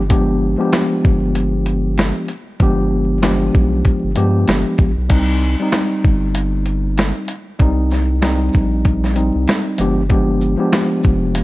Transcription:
Already playing: G1
0.09 F3 G#3 B3 D4 G4, kick, closed hi-hat
0.58 F3 G#3 B3 D4 G4
0.73 snare, closed hi-hat
1.05 G1, kick
1.35 closed hi-hat
1.66 closed hi-hat
1.98 snare, closed hi-hat
2.28 closed hi-hat
2.60 G1 F3 G#3 B3 D4 G4, kick, closed hi-hat
3.22 F3 G#3 B3 D4 G4, snare, closed hi-hat
3.55 B1, kick
3.85 kick, closed hi-hat
4.04 G1
4.15 G2 F3 G#3 B3 D4 G4, closed hi-hat
4.48 G1, snare, closed hi-hat
4.78 A#1, kick, closed hi-hat
4.98 B1
5.09 C2 G3 C4 D#4, kick, closed hi-hat, crash
5.60 G3 C4 D#4
5.72 finger snap, snare, closed hi-hat
6.05 G1, kick
6.35 closed hi-hat
6.66 closed hi-hat
6.97 finger snap, snare, closed hi-hat
7.28 closed hi-hat
7.59 C2 G3 C4 D#4, kick, closed hi-hat
7.91 snare, shaker
8.21 G3 C4 D#4, finger snap, snare, closed hi-hat
8.53 A#1, kick, shaker
8.85 kick, closed hi-hat
9.04 snare
9.14 G3 C4 D#4, closed hi-hat, shaker
9.35 C2
9.48 finger snap, snare, closed hi-hat
9.78 G1 F3 G#3 B3 D4 G4, closed hi-hat, shaker
10.09 F3 G#3 B3 D4 G4, kick, closed hi-hat
10.41 shaker
10.58 F3 G#3 B3 D4 G4
10.73 finger snap, snare, closed hi-hat
11.03 F1, kick, shaker
11.35 closed hi-hat

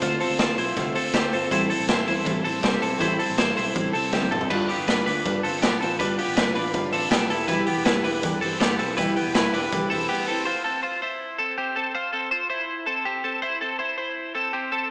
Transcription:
0.01 D2 D3 A3 C4 F4 C5, kick, closed hi-hat
0.20 C4 F4 A4 C5, open hi-hat
0.30 D2
0.38 A3 C4 F4 C5, kick, snare, closed hi-hat
0.57 B1 C4 E4 F4 C5, open hi-hat
0.76 C2 D3 A3 C4 F4 C5, kick, closed hi-hat
0.94 D2 C4 F4 A4 C5, open hi-hat
1.13 D2 A3 C4 F4 G4 C5, kick, snare, closed hi-hat
1.32 G1 C4 F4 A4 C5, open hi-hat
1.51 A1 A2 E3 G3 C4 E4 A4 C5, kick, closed hi-hat
1.70 G3 C4 E4 A4, open hi-hat
1.80 A1
1.87 G3 C4 E4 A4 C5, kick, snare, closed hi-hat
2.06 E2 G3 C4 E4 A4 C5, open hi-hat
2.24 A2 E3 G3 C4 E4 A4, kick, closed hi-hat
2.42 A1 G3 C4 E4 A4, open hi-hat
2.60 C2 G3 C4 E4 G4 A4, kick, closed hi-hat
2.64 C4, snare
2.79 B1 G3 C4 E4 A4, open hi-hat
2.98 A1 A2 E3 G3 C4 E4 A4 C5, kick, closed hi-hat
3.17 G3 C4 E4 A4, open hi-hat
3.30 A1
3.36 G3 C4 E4 A4 C5, kick, snare, closed hi-hat
3.55 B1 G3 C4 E4 A4 C5, open hi-hat
3.74 A1 A2 E3 G3 C4 E4 A4, kick, closed hi-hat
3.92 C2 G3 C4 E4 A4, open hi-hat
4.12 D2 G3 C4 E4 G4 A4, kick, snare
4.22 high tom
4.31 F1 G3 C4 E4 A4, mid tom
4.41 floor tom
4.50 G1 G3 D4 F4 B4, kick, crash
4.69 B3 D4 F4 G4 B4, open hi-hat
4.78 G1
4.86 G3 D4 F4 B4, kick, snare, closed hi-hat
5.06 D2 D4 F4 B4, open hi-hat
5.25 G2 G3 D4 F4 B4, kick, closed hi-hat
5.43 G1 C4 D4 F4 A4 B4, open hi-hat
5.62 B1 G3 B3 D4 F4 G4 B4, kick, snare, closed hi-hat
5.80 A1 C4 D4 F4 A4 B4, open hi-hat
5.99 G1 G3 D4 F4 B4, kick, closed hi-hat
6.16 B3 D4 F4 G4 B4, open hi-hat
6.28 G1
6.35 G3 D4 F4 B4, kick, snare, closed hi-hat
6.54 A1 D4 F4 B4, open hi-hat
6.72 G1 G3 D4 F4 B4, kick, closed hi-hat
6.91 A1 C4 D4 F4 A4 B4, open hi-hat
7.10 B1 G3 B3 D4 F4 G4 B4, kick, snare, closed hi-hat
7.30 E1 E4 G4 A4 B4, open hi-hat
7.48 E3 G3 E4 G4 B4, kick, closed hi-hat
7.66 B3 E4 G4 B4, open hi-hat
7.77 E1
7.84 G3 E4 G4 B4, kick, snare, closed hi-hat
8.04 E1 D4 E4 G4 B4, open hi-hat
8.23 E2 E3 G3 E4 G4 B4, kick, closed hi-hat
8.41 G2 C4 E4 G4 A4 B4, open hi-hat
8.60 G1 G3 B3 E4 G4 B4, kick, snare, closed hi-hat
8.79 B1 C4 G4 A4 B4, open hi-hat
8.83 E4
8.97 E1 E3 G3 E4 G4 B4, kick, closed hi-hat
9.16 B3 E4 G4 B4, open hi-hat
9.26 E1
9.34 G3 E4 G4 B4, kick, snare, closed hi-hat
9.53 E1 D4 E4 G4 B4, open hi-hat
9.71 F1 E3 G3 E4 G4 B4, kick, closed hi-hat
9.90 E1 C4 E4 G4 A4 B4, open hi-hat
10.09 G3 B3 E4 G4 B4
10.27 C4 E4 G4 A4 B4
10.46 F4 C5
10.64 C4 A4
10.83 F4 C5
11.02 E4 C5
11.39 C4 A4
11.58 C4 G4
11.76 C4 A4
11.95 F4 C5
12.13 C4 A4
12.31 F4 C5
12.50 E4 C5
12.86 C4 A4
13.05 C4 G4
13.24 C4 A4
13.42 E4 C5
13.61 C4 A4
13.79 E4 C5
13.98 E4 C5
14.35 C4 A4
14.53 C4 G4
14.72 C4 A4

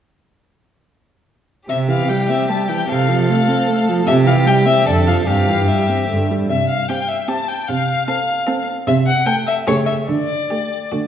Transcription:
1.69 C3 G4 E5
1.88 E3 F5
2.09 G3 G5
2.29 C4 E5
2.49 G3 A5
2.69 E3 G5
2.89 C3 A4 F5
3.09 F3
3.28 A3 F5
3.48 C4
3.68 A3
3.88 F3
4.07 C3 G4 E5
4.26 E3 F5
4.46 G3 G5
4.66 C4 E5
4.86 F2 D3 A4 D5
5.07 F3 F5
5.26 G2 C3 G4 F5
5.48 E3
5.68 G3 E5
5.89 C4
6.09 G2 D3
6.31 G3
6.49 C3 E5
6.69 F5
6.89 C4 G4 G5
7.08 E5
7.28 C4 G4 A5
7.48 G5
7.68 C3 F5
8.08 C4 A4 F5
8.47 C4 A4
8.87 C3 E5
9.07 F#5
9.26 A3 A4 G5
9.47 E5
9.67 C#3 A3 G4 C#5
9.86 E5
10.08 D3 D5
10.50 A3 G4
10.92 D3 A3 F#4

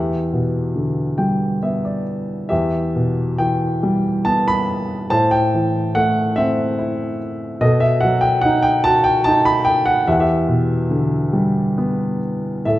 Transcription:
Already playing: E2 G4 E5
0.33 B2
0.76 D3
1.18 G3 G5
1.63 B3 E5
1.85 D5
2.49 E2 G4 E5
2.96 B2
3.38 E3 G5
3.83 G3
4.25 B3 A5
4.48 B5
5.10 A2 C5 A5
5.31 G5
5.54 E3
5.95 A3 F#5
6.36 C4 E5
6.78 E4
7.61 B2 A4 D#5
7.80 E5
8.01 F#3 F#5
8.21 G5
8.41 D#4 F#5
8.63 G5
8.84 F#4 A5
9.04 G5
9.24 D#4 A5
9.45 B5
9.65 G5
9.86 F#5
10.07 E2 G4 E5
10.12 F#5
10.20 G4 E5
10.48 B2
10.91 D3
11.33 G3
11.78 B3
12.65 A2 A4 E5

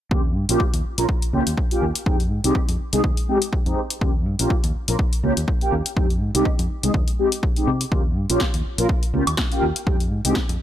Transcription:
0.11 D#2 A#3 C#4 F4 G4, kick
0.35 G2
0.49 A#1 A#3 C#4 F4 G4, closed hi-hat
0.60 kick
0.74 D#2, closed hi-hat
0.84 muted fingered electric bass stroke
0.97 A#1 A#3 C#4 F4 A#4, closed hi-hat
1.09 kick
1.22 closed hi-hat
1.33 C#2 A#3 C#4 F4 G4
1.47 D#2, closed hi-hat
1.57 kick
1.71 A#3 C#4 F4 G4, closed hi-hat
1.82 D#2
1.95 closed hi-hat
2.06 F2 G#3 C4 D#4 G4, kick
2.20 closed hi-hat
2.31 G#2
2.44 C2 G#3 C4 D#4 G4, closed hi-hat
2.55 kick
2.69 F2, closed hi-hat
2.80 muted fingered electric bass stroke
2.92 C2 G#3 C4 D#4 G#4, closed hi-hat
3.04 D#2, kick
3.17 closed hi-hat
3.28 G#3 C4 D#4 G4
3.42 closed hi-hat
3.53 kick
3.66 F2 G#3 C4 D#4 G4, closed hi-hat
3.90 closed hi-hat
4.01 D#2 A#3 C#4 F4 G4, kick
4.26 G2
4.39 A#1 A#3 C#4 F4 G4, closed hi-hat
4.50 kick
4.64 D#2, closed hi-hat
4.75 muted fingered electric bass stroke
4.88 A#1 A#3 C#4 F4 A#4, closed hi-hat
4.99 kick
5.13 closed hi-hat
5.23 C#2 A#3 C#4 F4 G4
5.37 D#2, closed hi-hat
5.48 kick
5.61 A#3 C#4 F4 G4, closed hi-hat
5.72 D#2
5.86 closed hi-hat
5.96 F2 G#3 C4 D#4 G4, kick
6.10 closed hi-hat
6.21 G#2
6.34 C2 G#3 C4 D#4 G4, closed hi-hat
6.45 kick
6.59 F2, closed hi-hat
6.70 muted fingered electric bass stroke
6.83 C2 G#3 C4 D#4 G#4, closed hi-hat
6.94 D#2, kick
7.08 closed hi-hat
7.18 G#3 C4 D#4 G4
7.32 closed hi-hat
7.43 kick
7.56 G#3 C4 D#4 G4, closed hi-hat
7.67 C3
7.81 closed hi-hat
7.92 D#2 A#3 C#4 F4 G4, kick
8.16 G2
8.29 A#1 A#3 C#4 F4 G4, closed hi-hat
8.40 kick, snare
8.54 D#2, closed hi-hat
8.65 muted fingered electric bass stroke
8.78 A#1 A#3 C#4 F4 A#4, closed hi-hat
8.89 kick
9.03 closed hi-hat
9.13 C#2 A#3 C#4 F4 G4
9.27 D#2, closed hi-hat, high woodblock
9.37 kick, snare
9.51 A#3 C#4 F4 G4, closed hi-hat
9.62 D#2
9.76 closed hi-hat
9.87 F2 G#3 C4 D#4 G4, kick
10.00 closed hi-hat
10.11 G#2
10.24 C2 G#3 C4 D#4 G4, closed hi-hat
10.35 kick, snare
10.49 F2, closed hi-hat

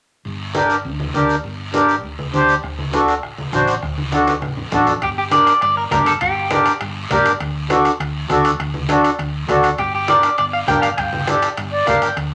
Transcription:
0.25 G1, high conga, long guiro
0.55 D4 G4 A#4, high conga, short guiro
0.70 short guiro
0.85 D2, high conga, long guiro
1.00 high conga
1.14 D2 D4 G4 A#4, high conga, short guiro
1.29 short guiro
1.44 G1, high conga, long guiro
1.73 D4 G4 A#4, high conga, short guiro
1.89 short guiro
2.04 D2, high conga, long guiro
2.19 high conga
2.33 D2 D4 G4 C5, high conga, short guiro
2.49 short guiro
2.63 D2, bombo low, bombo rim, high conga, long guiro
2.79 high conga
2.93 D4 F#4 A4, bombo rim, high conga, short guiro
3.08 bombo rim, short guiro
3.23 A1, bombo rim, high conga, long guiro
3.38 high conga
3.52 A1 D4 F#4 C5, bombo low, bombo rim, high conga, short guiro
3.68 bombo rim, short guiro
3.82 D2, bombo low, bombo rim, high conga, long guiro
3.98 high conga
4.12 D4 F#4 A4, bombo rim, high conga, short guiro
4.27 bombo rim, high conga, short guiro
4.42 A1, bombo rim, high conga, long guiro
4.57 low conga
4.72 A1 D4 F#4 A4, bombo low, bombo rim, low conga, short guiro
4.87 bombo rim, low conga, short guiro
5.02 G1 G4, bombo low, bombo rim, high conga, high timbale, long guiro
5.18 G4
5.31 D4 G4 A#4 D5, bombo rim, high conga, high timbale, short guiro
5.47 bombo rim, high timbale, short guiro
5.61 G1 D5, bombo rim, high conga, high timbale, long guiro
5.77 A#4
5.91 G1 D4 G4 A#4, bombo low, bombo rim, high conga, high timbale, low timbale, short guiro
6.06 A4, bombo rim, high timbale, short guiro
6.21 G1 G4, bombo low, bombo rim, high conga, high timbale, long guiro
6.51 D4 G4 A#4, bombo rim, high conga, high timbale, short guiro
6.66 bombo rim, high timbale, short guiro
6.80 G1, bombo rim, high conga, high timbale, long guiro
7.10 G1 D4 G4 A#4, bombo low, bombo rim, high conga, high timbale, low timbale, short guiro
7.25 bombo rim, high timbale, short guiro
7.40 D2, bombo low, bombo rim, high conga, high timbale, long guiro
7.70 D4 F#4 A4, bombo rim, high conga, high timbale, short guiro
7.85 bombo rim, high timbale, short guiro
8.00 D2, bombo rim, high conga, high timbale, long guiro
8.30 D2 D4 F#4 A4, bombo low, bombo rim, high conga, high timbale, short guiro
8.45 bombo rim, high timbale, short guiro
8.59 D2, bombo low, bombo rim, high conga, high timbale, long guiro
8.74 high conga
8.89 D4 F#4 A4, bombo rim, high conga, high timbale, short guiro
9.04 bombo rim, high timbale, short guiro
9.19 D2, bombo rim, high conga, high timbale, long guiro
9.48 D2 D4 F#4 A4, bombo low, bombo rim, high conga, high timbale, low timbale, short guiro
9.63 bombo rim, high timbale, short guiro
9.78 G1 G4, bombo low, bombo rim, high conga, high timbale, long guiro
9.95 G4
10.08 D4 G4 A#4 D5, bombo rim, high conga, high timbale, short guiro
10.23 bombo rim, high timbale, short guiro
10.38 G1 D5, bombo rim, high conga, high timbale, long guiro
10.53 F5
10.68 G1 D4 G4 A#4 G5, bombo low, bombo rim, high conga, high timbale, low timbale, short guiro
10.82 F5, bombo rim, high timbale, short guiro
10.97 G1 G5, bombo low, bombo rim, high conga, high timbale, long guiro
11.13 high conga
11.27 D4 G4 A4, bombo rim, high conga, high timbale, short guiro
11.42 bombo rim, high timbale, short guiro
11.57 G1, bombo rim, high conga, high timbale, long guiro
11.73 D5
11.86 G1 D4 G4 A#4 F5, bombo low, bombo rim, high conga, high timbale, low timbale, short guiro
12.02 G5, bombo rim, high timbale, short guiro
12.17 D2, bombo low, bombo rim, high conga, high timbale, long guiro

